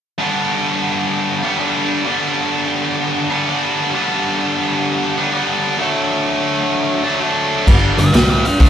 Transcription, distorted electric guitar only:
0.18 1.44 G2 medium
0.18 1.42 D3 medium
0.18 1.44 G3 medium
0.18 1.43 B3 medium
0.18 1.42 D4 medium
1.43 1.57 G2 medium
1.43 1.57 D3 medium
1.43 1.59 G3 medium
1.43 1.59 B3 medium
1.43 1.59 D4 medium
1.57 2.04 G2 medium
1.57 2.04 D3 medium
1.57 2.05 G3 medium
1.57 2.06 B3 medium
1.57 2.06 D4 medium
2.05 3.28 G2 medium
2.05 3.29 D3 medium
2.05 3.29 G3 medium
2.05 3.29 B3 medium
2.05 3.30 D4 medium
3.30 3.45 G2 medium
3.30 3.46 D3 medium
3.30 3.45 G3 medium
3.30 3.45 B3 medium
3.30 3.48 D4 medium
3.46 3.92 G2 medium
3.46 3.92 D3 medium
3.46 3.93 G3 medium
3.46 3.93 B3 medium
3.46 3.95 D4 medium
3.94 5.16 G2 medium
3.94 5.16 D3 medium
3.94 5.17 G3 medium
3.94 5.17 B3 medium
3.94 5.17 D4 medium
5.17 5.31 G2 medium
5.17 5.31 D3 medium
5.17 5.32 G3 medium
5.17 5.32 B3 medium
5.17 5.34 D4 medium
5.32 5.79 G2 medium
5.32 5.77 D3 medium
5.32 5.78 G3 medium
5.32 5.79 B3 medium
5.32 5.80 D4 medium
5.78 7.02 D3 medium
5.78 7.02 F#3 medium
5.78 7.03 A3 medium
5.78 7.03 D4 medium
7.04 7.18 D3 medium
7.04 7.19 F#3 medium
7.04 7.19 A3 medium
7.04 7.19 D4 medium
7.19 7.65 D3 medium
7.19 7.66 F#3 medium
7.19 7.66 A3 medium
7.19 7.66 D4 medium
7.67 7.97 G2 medium
7.67 7.97 D3 medium
7.67 7.97 G3 medium
7.98 8.10 G2 medium
7.98 8.10 D3 medium
8.13 8.43 C3 medium
8.13 8.43 G3 medium
8.13 8.43 C4 medium
8.44 muted distorted electric guitar stroke medium
8.60 8.70 D3 medium
8.60 8.70 A3 loud
8.60 8.70 D4 loud

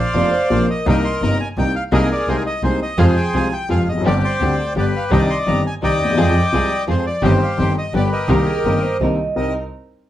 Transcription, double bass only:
0.15 0.30 F1 medium
0.51 0.66 A#1 medium
0.87 1.02 C2 loud
1.22 1.37 G1 medium
1.57 1.72 C2 medium
1.93 2.08 C2 loud
2.28 2.43 C2 medium
2.63 2.78 C2 medium
2.98 3.13 F2 loud
3.34 3.49 C2 medium
3.69 3.84 F2 medium
3.88 4.05 F1 medium
4.05 4.20 G1 medium
4.40 4.55 D2 medium
4.76 4.91 G1 medium
5.11 5.27 C2 loud
5.48 5.63 G1 medium
5.83 5.98 C2 medium
6.01 6.17 D#2 medium
6.18 6.33 F2 loud
6.53 6.68 C2 medium
6.88 7.03 F2 medium
7.23 7.38 G1 loud
7.58 7.73 G1 medium
7.94 8.09 G1 medium
8.28 8.44 C2 loud
8.65 8.80 G1 medium
9.01 9.16 C2 medium
9.36 9.51 C2 medium

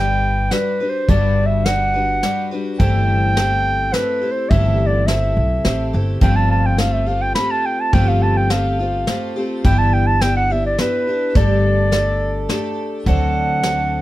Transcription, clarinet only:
0.00 0.54 G5 loud
0.52 0.91 B4 medium
0.90 1.11 C5 medium
1.09 1.48 D5 medium
1.46 1.67 E5 medium
1.65 2.51 F#5 medium
2.79 3.95 G5 loud
3.94 4.33 B4 medium
4.32 4.51 C5 medium
4.50 4.88 E5 medium
4.87 5.09 D5 medium
5.07 5.93 E5 medium
6.22 6.38 G5 medium
6.36 6.50 A5 medium
6.51 6.67 A5 medium
6.66 6.79 G5 medium
6.80 6.94 F5 medium
6.93 7.09 E5 medium
7.08 7.24 F5 medium
7.22 7.35 G5 medium
7.35 7.53 B5 medium
7.51 7.67 A5 medium
7.66 7.82 G5 medium
7.80 7.95 A5 medium
7.94 8.10 G5 medium
8.09 8.24 F5 medium
8.23 8.38 A5 medium
8.37 8.53 G5 medium
8.51 9.36 F5 medium
9.65 9.80 G5 medium
9.78 9.95 A5 medium
9.93 10.08 G5 medium
10.07 10.23 A5 loud
10.21 10.36 G5 loud
10.37 10.54 F#5 medium
10.52 10.65 E5 medium
10.66 10.81 D5 medium
10.79 11.38 B4 medium
11.37 12.50 D5 medium
13.07 14.02 F#5 medium

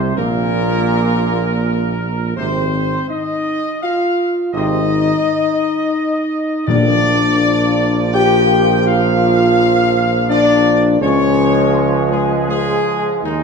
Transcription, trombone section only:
0.00 0.17 C3 loud
0.17 2.32 A#2 loud
2.36 2.62 C3 medium
2.36 2.62 C4 medium
4.53 4.79 C3 medium
4.53 4.79 C4 medium
6.68 10.97 F3 medium
6.68 10.97 A#3 medium
11.01 13.19 F3 loud
11.01 13.43 G#3 loud
13.22 13.43 D#3 medium

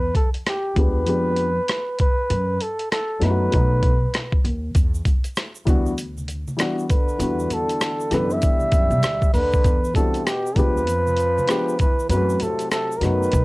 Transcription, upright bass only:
0.76 1.07 D2 medium
1.07 1.57 F2 loud
2.30 2.55 F#2 loud
3.21 3.47 F#2 medium
3.53 4.03 B1 medium
4.44 4.70 D#2 medium
4.75 5.00 E2 loud
5.67 6.43 D2 medium
7.19 7.45 E2 loud
8.11 8.37 F#2 medium
8.72 8.88 F#2 medium
8.90 9.03 B1 medium
9.03 9.28 D2 medium
9.34 9.59 D#2 medium
9.64 9.90 E2 loud
10.56 10.87 D2 medium
10.87 11.37 F2 loud
12.09 12.35 F#2 loud
13.01 13.26 F#2 medium
13.33 13.45 B1 loud

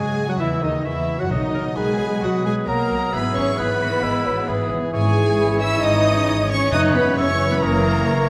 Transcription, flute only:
0.00 0.42 C#6 medium
0.41 0.84 E6 medium
0.85 1.30 C#6 medium
1.31 1.78 D#6 medium
1.76 2.22 B5 medium
2.22 2.67 D#6 medium
2.68 3.15 D#6 medium
3.14 3.60 E6 medium
3.58 4.04 F#6 medium
4.03 4.48 E6 medium
4.48 4.92 D#6 medium
4.93 5.37 C#6 medium
5.39 6.43 B5 medium
6.73 7.15 F#6 loud
7.18 7.64 E6 medium
7.62 8.07 D#6 medium
8.07 8.29 C#6 medium

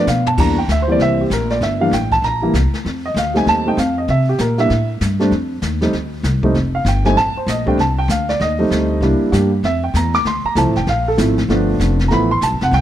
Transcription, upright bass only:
0.07 0.37 B2 medium
0.38 0.67 E2 medium
0.68 0.98 D2 medium
0.98 1.29 C2 medium
1.30 1.60 A#1 medium
1.61 1.91 G1 medium
1.91 2.22 A1 medium
2.22 2.52 A#1 medium
2.54 2.72 C2 medium
2.73 muted upright bass stroke soft
2.85 3.14 F2 medium
3.14 3.45 D2 medium
3.46 3.76 D#2 medium
3.77 4.07 F2 medium
4.08 4.38 C3 medium
4.39 4.69 A#2 medium
4.70 5.00 A2 medium
5.01 5.30 G2 medium
5.31 5.61 F2 medium
5.62 5.92 D#2 medium
5.93 6.23 D2 medium
6.23 6.53 C2 medium
6.54 6.84 F1 medium
6.85 7.15 G1 loud
7.16 7.34 A1 medium
7.35 muted upright bass stroke soft
7.46 7.77 A#1 medium
7.78 8.08 C2 medium
8.08 8.39 D2 loud
8.40 8.70 D#2 medium
8.70 9.00 D2 medium
9.01 9.19 C2 medium
9.20 muted upright bass stroke soft
9.32 9.62 G2 medium
9.63 9.93 F2 medium
9.94 10.24 E2 medium
10.24 10.43 D2 medium
10.44 muted upright bass stroke soft
10.55 10.66 C2 medium
10.66 10.75 A1 medium
10.76 10.86 F1 medium
10.87 11.17 A#1 medium
11.18 11.48 G#1 medium
11.48 11.79 G1 medium
11.80 12.10 F1 medium
12.10 12.40 A1 medium
12.41 12.54 B1 medium
12.52 12.61 G1 medium
12.62 12.71 F1 medium
12.71 12.81 C2 medium

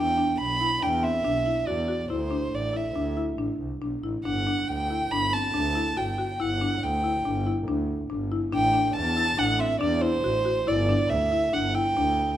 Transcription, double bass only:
0.00 0.29 E2 medium
0.39 0.72 B1 medium
0.81 1.14 E2 medium
1.24 1.57 B1 medium
1.67 1.99 E2 medium
2.09 2.42 D2 medium
2.52 2.85 A1 medium
2.95 3.28 D2 medium
3.38 3.54 A1 medium
3.60 3.80 C2 medium
3.81 4.01 B1 medium
4.03 4.23 A1 medium
4.24 4.57 G1 medium
4.68 5.01 D2 medium
5.11 5.44 G1 medium
5.54 5.87 D2 medium
5.97 6.30 G1 medium
6.40 6.72 G1 medium
6.82 7.15 D2 medium
7.25 7.58 G1 loud
7.67 8.00 D2 medium
8.10 8.42 G1 medium
8.52 8.85 A1 loud
8.95 9.28 E2 medium
9.38 9.71 A1 loud
9.80 10.13 E2 loud
10.23 10.56 A1 medium
10.67 11.00 G1 loud
11.09 11.42 D2 medium
11.53 11.86 G1 medium
11.96 12.30 D2 medium

